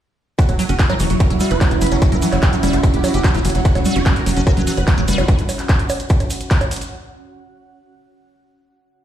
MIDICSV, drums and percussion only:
0, 0, Header, 1, 2, 480
1, 0, Start_track
1, 0, Tempo, 408163
1, 454, Time_signature, 4, 2, 24, 8
1, 10639, End_track
2, 0, Start_track
2, 0, Title_t, "Drums"
2, 454, Note_on_c, 9, 36, 121
2, 454, Note_on_c, 9, 42, 86
2, 467, Note_on_c, 9, 82, 55
2, 571, Note_off_c, 9, 82, 0
2, 571, Note_on_c, 9, 82, 26
2, 572, Note_off_c, 9, 36, 0
2, 572, Note_off_c, 9, 42, 0
2, 574, Note_on_c, 9, 42, 54
2, 574, Note_on_c, 9, 60, 38
2, 688, Note_off_c, 9, 82, 0
2, 692, Note_off_c, 9, 42, 0
2, 692, Note_off_c, 9, 60, 0
2, 694, Note_on_c, 9, 46, 107
2, 704, Note_on_c, 9, 82, 88
2, 811, Note_off_c, 9, 46, 0
2, 814, Note_on_c, 9, 42, 55
2, 818, Note_off_c, 9, 82, 0
2, 818, Note_on_c, 9, 82, 43
2, 931, Note_off_c, 9, 42, 0
2, 934, Note_on_c, 9, 36, 120
2, 934, Note_on_c, 9, 39, 127
2, 934, Note_on_c, 9, 42, 59
2, 935, Note_off_c, 9, 82, 0
2, 936, Note_on_c, 9, 82, 57
2, 1051, Note_off_c, 9, 36, 0
2, 1051, Note_off_c, 9, 39, 0
2, 1051, Note_off_c, 9, 42, 0
2, 1053, Note_off_c, 9, 82, 0
2, 1054, Note_on_c, 9, 42, 55
2, 1054, Note_on_c, 9, 60, 77
2, 1059, Note_on_c, 9, 82, 26
2, 1171, Note_off_c, 9, 82, 0
2, 1171, Note_on_c, 9, 82, 86
2, 1172, Note_off_c, 9, 42, 0
2, 1172, Note_off_c, 9, 60, 0
2, 1174, Note_on_c, 9, 46, 108
2, 1288, Note_off_c, 9, 82, 0
2, 1291, Note_off_c, 9, 46, 0
2, 1294, Note_on_c, 9, 42, 58
2, 1294, Note_on_c, 9, 82, 41
2, 1411, Note_off_c, 9, 42, 0
2, 1411, Note_off_c, 9, 82, 0
2, 1412, Note_on_c, 9, 82, 54
2, 1414, Note_on_c, 9, 36, 117
2, 1414, Note_on_c, 9, 42, 83
2, 1414, Note_on_c, 9, 60, 40
2, 1530, Note_off_c, 9, 82, 0
2, 1532, Note_off_c, 9, 36, 0
2, 1532, Note_off_c, 9, 42, 0
2, 1532, Note_off_c, 9, 60, 0
2, 1534, Note_on_c, 9, 42, 55
2, 1535, Note_on_c, 9, 82, 28
2, 1645, Note_off_c, 9, 82, 0
2, 1645, Note_on_c, 9, 82, 102
2, 1651, Note_off_c, 9, 42, 0
2, 1654, Note_on_c, 9, 46, 108
2, 1762, Note_off_c, 9, 82, 0
2, 1768, Note_on_c, 9, 82, 39
2, 1771, Note_off_c, 9, 46, 0
2, 1774, Note_on_c, 9, 42, 54
2, 1885, Note_off_c, 9, 82, 0
2, 1891, Note_off_c, 9, 42, 0
2, 1894, Note_on_c, 9, 36, 123
2, 1894, Note_on_c, 9, 39, 118
2, 1894, Note_on_c, 9, 42, 83
2, 1894, Note_on_c, 9, 60, 76
2, 1897, Note_on_c, 9, 82, 59
2, 2009, Note_off_c, 9, 82, 0
2, 2009, Note_on_c, 9, 82, 29
2, 2011, Note_off_c, 9, 36, 0
2, 2011, Note_off_c, 9, 39, 0
2, 2011, Note_off_c, 9, 42, 0
2, 2011, Note_off_c, 9, 60, 0
2, 2014, Note_on_c, 9, 42, 55
2, 2126, Note_off_c, 9, 82, 0
2, 2130, Note_on_c, 9, 82, 102
2, 2132, Note_off_c, 9, 42, 0
2, 2134, Note_on_c, 9, 46, 105
2, 2194, Note_on_c, 9, 42, 69
2, 2248, Note_off_c, 9, 82, 0
2, 2249, Note_on_c, 9, 82, 42
2, 2251, Note_off_c, 9, 46, 0
2, 2254, Note_off_c, 9, 42, 0
2, 2254, Note_on_c, 9, 42, 58
2, 2254, Note_on_c, 9, 60, 38
2, 2367, Note_off_c, 9, 82, 0
2, 2371, Note_off_c, 9, 42, 0
2, 2371, Note_off_c, 9, 60, 0
2, 2374, Note_on_c, 9, 36, 127
2, 2374, Note_on_c, 9, 42, 80
2, 2376, Note_on_c, 9, 82, 58
2, 2491, Note_off_c, 9, 36, 0
2, 2491, Note_off_c, 9, 42, 0
2, 2493, Note_off_c, 9, 82, 0
2, 2494, Note_on_c, 9, 42, 55
2, 2495, Note_on_c, 9, 82, 28
2, 2610, Note_off_c, 9, 82, 0
2, 2610, Note_on_c, 9, 82, 101
2, 2611, Note_off_c, 9, 42, 0
2, 2614, Note_on_c, 9, 46, 116
2, 2727, Note_off_c, 9, 82, 0
2, 2731, Note_off_c, 9, 46, 0
2, 2733, Note_on_c, 9, 39, 39
2, 2733, Note_on_c, 9, 42, 51
2, 2733, Note_on_c, 9, 60, 74
2, 2739, Note_on_c, 9, 82, 45
2, 2849, Note_off_c, 9, 82, 0
2, 2849, Note_on_c, 9, 82, 53
2, 2851, Note_off_c, 9, 39, 0
2, 2851, Note_off_c, 9, 42, 0
2, 2851, Note_off_c, 9, 60, 0
2, 2854, Note_on_c, 9, 36, 127
2, 2854, Note_on_c, 9, 39, 127
2, 2854, Note_on_c, 9, 42, 56
2, 2966, Note_off_c, 9, 82, 0
2, 2971, Note_off_c, 9, 36, 0
2, 2971, Note_off_c, 9, 39, 0
2, 2971, Note_off_c, 9, 42, 0
2, 2974, Note_on_c, 9, 42, 54
2, 2979, Note_on_c, 9, 82, 26
2, 3091, Note_off_c, 9, 42, 0
2, 3094, Note_on_c, 9, 46, 112
2, 3094, Note_on_c, 9, 60, 41
2, 3096, Note_off_c, 9, 82, 0
2, 3096, Note_on_c, 9, 82, 89
2, 3211, Note_off_c, 9, 46, 0
2, 3211, Note_off_c, 9, 60, 0
2, 3212, Note_off_c, 9, 82, 0
2, 3212, Note_on_c, 9, 82, 38
2, 3214, Note_on_c, 9, 42, 58
2, 3329, Note_off_c, 9, 82, 0
2, 3331, Note_off_c, 9, 42, 0
2, 3334, Note_on_c, 9, 36, 121
2, 3334, Note_on_c, 9, 42, 82
2, 3337, Note_on_c, 9, 82, 55
2, 3448, Note_off_c, 9, 82, 0
2, 3448, Note_on_c, 9, 82, 27
2, 3451, Note_off_c, 9, 36, 0
2, 3452, Note_off_c, 9, 42, 0
2, 3454, Note_on_c, 9, 42, 56
2, 3566, Note_off_c, 9, 82, 0
2, 3572, Note_off_c, 9, 42, 0
2, 3574, Note_on_c, 9, 46, 116
2, 3574, Note_on_c, 9, 60, 79
2, 3574, Note_on_c, 9, 82, 102
2, 3691, Note_off_c, 9, 46, 0
2, 3691, Note_off_c, 9, 60, 0
2, 3692, Note_off_c, 9, 82, 0
2, 3694, Note_on_c, 9, 42, 54
2, 3696, Note_on_c, 9, 82, 42
2, 3811, Note_off_c, 9, 42, 0
2, 3814, Note_off_c, 9, 82, 0
2, 3814, Note_on_c, 9, 36, 119
2, 3814, Note_on_c, 9, 39, 126
2, 3814, Note_on_c, 9, 42, 80
2, 3826, Note_on_c, 9, 82, 57
2, 3931, Note_off_c, 9, 36, 0
2, 3931, Note_off_c, 9, 39, 0
2, 3931, Note_off_c, 9, 42, 0
2, 3932, Note_off_c, 9, 82, 0
2, 3932, Note_on_c, 9, 82, 31
2, 3934, Note_on_c, 9, 42, 52
2, 3934, Note_on_c, 9, 60, 38
2, 4050, Note_off_c, 9, 82, 0
2, 4051, Note_off_c, 9, 42, 0
2, 4051, Note_off_c, 9, 60, 0
2, 4054, Note_on_c, 9, 46, 114
2, 4054, Note_on_c, 9, 82, 94
2, 4114, Note_on_c, 9, 42, 67
2, 4168, Note_off_c, 9, 82, 0
2, 4168, Note_on_c, 9, 82, 38
2, 4171, Note_off_c, 9, 46, 0
2, 4174, Note_off_c, 9, 42, 0
2, 4174, Note_on_c, 9, 42, 57
2, 4286, Note_off_c, 9, 82, 0
2, 4292, Note_off_c, 9, 42, 0
2, 4294, Note_on_c, 9, 36, 127
2, 4294, Note_on_c, 9, 42, 81
2, 4295, Note_on_c, 9, 82, 49
2, 4411, Note_off_c, 9, 36, 0
2, 4412, Note_off_c, 9, 42, 0
2, 4413, Note_off_c, 9, 82, 0
2, 4414, Note_on_c, 9, 42, 51
2, 4414, Note_on_c, 9, 60, 79
2, 4418, Note_on_c, 9, 82, 29
2, 4526, Note_off_c, 9, 82, 0
2, 4526, Note_on_c, 9, 82, 96
2, 4532, Note_off_c, 9, 42, 0
2, 4532, Note_off_c, 9, 60, 0
2, 4534, Note_on_c, 9, 46, 112
2, 4644, Note_off_c, 9, 82, 0
2, 4652, Note_off_c, 9, 46, 0
2, 4653, Note_on_c, 9, 82, 46
2, 4654, Note_on_c, 9, 42, 52
2, 4771, Note_off_c, 9, 82, 0
2, 4772, Note_off_c, 9, 42, 0
2, 4774, Note_on_c, 9, 36, 127
2, 4774, Note_on_c, 9, 39, 127
2, 4774, Note_on_c, 9, 42, 52
2, 4774, Note_on_c, 9, 60, 42
2, 4774, Note_on_c, 9, 82, 57
2, 4891, Note_off_c, 9, 36, 0
2, 4891, Note_off_c, 9, 82, 0
2, 4892, Note_off_c, 9, 39, 0
2, 4892, Note_off_c, 9, 42, 0
2, 4892, Note_off_c, 9, 60, 0
2, 4894, Note_on_c, 9, 42, 53
2, 4896, Note_on_c, 9, 82, 26
2, 5012, Note_off_c, 9, 42, 0
2, 5014, Note_off_c, 9, 82, 0
2, 5014, Note_on_c, 9, 46, 113
2, 5025, Note_on_c, 9, 82, 99
2, 5132, Note_off_c, 9, 46, 0
2, 5134, Note_on_c, 9, 42, 55
2, 5136, Note_off_c, 9, 82, 0
2, 5136, Note_on_c, 9, 82, 44
2, 5252, Note_off_c, 9, 42, 0
2, 5254, Note_off_c, 9, 82, 0
2, 5254, Note_on_c, 9, 36, 120
2, 5254, Note_on_c, 9, 42, 77
2, 5254, Note_on_c, 9, 60, 81
2, 5259, Note_on_c, 9, 82, 49
2, 5372, Note_off_c, 9, 36, 0
2, 5372, Note_off_c, 9, 42, 0
2, 5372, Note_off_c, 9, 60, 0
2, 5374, Note_on_c, 9, 42, 52
2, 5377, Note_off_c, 9, 82, 0
2, 5381, Note_on_c, 9, 82, 25
2, 5490, Note_off_c, 9, 82, 0
2, 5490, Note_on_c, 9, 82, 107
2, 5492, Note_off_c, 9, 42, 0
2, 5494, Note_on_c, 9, 46, 112
2, 5608, Note_off_c, 9, 82, 0
2, 5612, Note_off_c, 9, 46, 0
2, 5614, Note_on_c, 9, 42, 52
2, 5614, Note_on_c, 9, 60, 39
2, 5618, Note_on_c, 9, 82, 43
2, 5732, Note_off_c, 9, 42, 0
2, 5732, Note_off_c, 9, 60, 0
2, 5734, Note_on_c, 9, 36, 124
2, 5734, Note_on_c, 9, 39, 117
2, 5734, Note_on_c, 9, 42, 77
2, 5736, Note_off_c, 9, 82, 0
2, 5739, Note_on_c, 9, 82, 57
2, 5849, Note_off_c, 9, 82, 0
2, 5849, Note_on_c, 9, 82, 30
2, 5851, Note_off_c, 9, 39, 0
2, 5851, Note_off_c, 9, 42, 0
2, 5852, Note_off_c, 9, 36, 0
2, 5854, Note_on_c, 9, 42, 53
2, 5966, Note_off_c, 9, 82, 0
2, 5972, Note_off_c, 9, 42, 0
2, 5974, Note_on_c, 9, 46, 112
2, 5974, Note_on_c, 9, 82, 103
2, 6034, Note_on_c, 9, 42, 63
2, 6091, Note_off_c, 9, 46, 0
2, 6091, Note_off_c, 9, 82, 0
2, 6094, Note_off_c, 9, 42, 0
2, 6094, Note_on_c, 9, 42, 52
2, 6094, Note_on_c, 9, 60, 83
2, 6098, Note_on_c, 9, 82, 42
2, 6212, Note_off_c, 9, 42, 0
2, 6212, Note_off_c, 9, 60, 0
2, 6213, Note_off_c, 9, 82, 0
2, 6213, Note_on_c, 9, 82, 50
2, 6214, Note_on_c, 9, 36, 127
2, 6214, Note_on_c, 9, 42, 76
2, 6330, Note_off_c, 9, 82, 0
2, 6332, Note_off_c, 9, 36, 0
2, 6332, Note_off_c, 9, 42, 0
2, 6334, Note_on_c, 9, 42, 51
2, 6337, Note_on_c, 9, 82, 29
2, 6452, Note_off_c, 9, 42, 0
2, 6454, Note_on_c, 9, 46, 114
2, 6454, Note_on_c, 9, 60, 43
2, 6455, Note_off_c, 9, 82, 0
2, 6456, Note_on_c, 9, 82, 99
2, 6572, Note_off_c, 9, 46, 0
2, 6572, Note_off_c, 9, 60, 0
2, 6572, Note_off_c, 9, 82, 0
2, 6572, Note_on_c, 9, 82, 44
2, 6574, Note_on_c, 9, 39, 37
2, 6574, Note_on_c, 9, 42, 50
2, 6689, Note_off_c, 9, 82, 0
2, 6692, Note_off_c, 9, 39, 0
2, 6692, Note_off_c, 9, 42, 0
2, 6693, Note_on_c, 9, 82, 56
2, 6694, Note_on_c, 9, 36, 127
2, 6694, Note_on_c, 9, 39, 124
2, 6694, Note_on_c, 9, 42, 55
2, 6810, Note_off_c, 9, 82, 0
2, 6812, Note_off_c, 9, 36, 0
2, 6812, Note_off_c, 9, 39, 0
2, 6812, Note_off_c, 9, 42, 0
2, 6814, Note_on_c, 9, 42, 52
2, 6820, Note_on_c, 9, 82, 25
2, 6931, Note_off_c, 9, 82, 0
2, 6931, Note_on_c, 9, 82, 94
2, 6932, Note_off_c, 9, 42, 0
2, 6934, Note_on_c, 9, 46, 112
2, 6934, Note_on_c, 9, 60, 85
2, 7049, Note_off_c, 9, 82, 0
2, 7052, Note_off_c, 9, 46, 0
2, 7052, Note_off_c, 9, 60, 0
2, 7052, Note_on_c, 9, 82, 38
2, 7054, Note_on_c, 9, 42, 52
2, 7166, Note_off_c, 9, 82, 0
2, 7166, Note_on_c, 9, 82, 53
2, 7172, Note_off_c, 9, 42, 0
2, 7174, Note_on_c, 9, 36, 120
2, 7174, Note_on_c, 9, 42, 80
2, 7283, Note_off_c, 9, 82, 0
2, 7290, Note_on_c, 9, 82, 28
2, 7292, Note_off_c, 9, 36, 0
2, 7292, Note_off_c, 9, 42, 0
2, 7294, Note_on_c, 9, 42, 53
2, 7294, Note_on_c, 9, 60, 43
2, 7407, Note_off_c, 9, 82, 0
2, 7411, Note_on_c, 9, 82, 115
2, 7412, Note_off_c, 9, 42, 0
2, 7412, Note_off_c, 9, 60, 0
2, 7414, Note_on_c, 9, 46, 110
2, 7528, Note_off_c, 9, 82, 0
2, 7531, Note_off_c, 9, 46, 0
2, 7534, Note_on_c, 9, 42, 52
2, 7535, Note_on_c, 9, 82, 45
2, 7651, Note_off_c, 9, 42, 0
2, 7653, Note_off_c, 9, 82, 0
2, 7654, Note_on_c, 9, 36, 125
2, 7654, Note_on_c, 9, 39, 120
2, 7654, Note_on_c, 9, 42, 76
2, 7654, Note_on_c, 9, 82, 49
2, 7771, Note_off_c, 9, 36, 0
2, 7771, Note_off_c, 9, 39, 0
2, 7771, Note_off_c, 9, 42, 0
2, 7771, Note_off_c, 9, 82, 0
2, 7771, Note_on_c, 9, 82, 31
2, 7774, Note_on_c, 9, 42, 48
2, 7774, Note_on_c, 9, 60, 82
2, 7889, Note_off_c, 9, 82, 0
2, 7892, Note_off_c, 9, 42, 0
2, 7892, Note_off_c, 9, 60, 0
2, 7894, Note_on_c, 9, 46, 108
2, 7900, Note_on_c, 9, 82, 91
2, 7954, Note_on_c, 9, 42, 62
2, 8011, Note_off_c, 9, 46, 0
2, 8014, Note_off_c, 9, 42, 0
2, 8014, Note_on_c, 9, 42, 53
2, 8017, Note_off_c, 9, 82, 0
2, 8017, Note_on_c, 9, 82, 43
2, 8131, Note_off_c, 9, 42, 0
2, 8134, Note_off_c, 9, 82, 0
2, 10639, End_track
0, 0, End_of_file